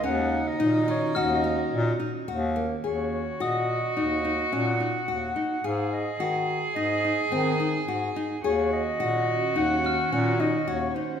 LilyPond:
<<
  \new Staff \with { instrumentName = "Glockenspiel" } { \time 5/4 \key ees \minor \tempo 4 = 107 r2 f'''2~ f'''8 r8 | r4 ees'''2~ ees'''8 r4. | r1 r4 | r2 r8 f'''2~ f'''8 | }
  \new Staff \with { instrumentName = "Clarinet" } { \time 5/4 \key ees \minor ges''8. ees''8. des''8 ees''4. r4. | des''4 ees''4 ees''4 ges''4 ges''4 | f''8 ees''4 r8 ees''4 r2 | des''8 ees''4. ges''4 ges''8 ees''8 des''8 c''8 | }
  \new Staff \with { instrumentName = "Cello" } { \time 5/4 \key ees \minor ees'1~ ees'8 r8 | ges'1~ ges'4 | aes'1~ aes'4 | ges'1~ ges'4 | }
  \new Staff \with { instrumentName = "Nylon-string guitar" } { \time 5/4 \key ees \minor des'4 ees'8 f'8 ges'8 des'4 ees'8 ges'8 bes8 | aes'4 ges'4 ees'8 ees'8 des'8 ees'8 ges'8 ees'8 | aes'4 ges'4 ees'8 ees'8 c'8 ees'8 ges'8 ees'8 | aes'4 ges'4 ees'8 ees'8 des'8 ees'8 ges'8 ees'8 | }
  \new Staff \with { instrumentName = "Ambient pad" } { \time 5/4 \key ees \minor <ees des' ges'>1~ <ees des' ges'>4 | r1 r4 | r1 r4 | <ees des' ges'>1~ <ees des' ges'>4 | }
  \new Staff \with { instrumentName = "Bass clarinet" } { \clef bass \time 5/4 \key ees \minor ees,4 bes,4 ees,4 bes,8 r8 ees,4 | ees,4 bes,4 ees,4 bes,4 ees,8 r8 | aes,4 ees4 aes,4 ees4 aes,8 r8 | ees,4 bes,4 ees,4 bes,4 ees,8 r8 | }
>>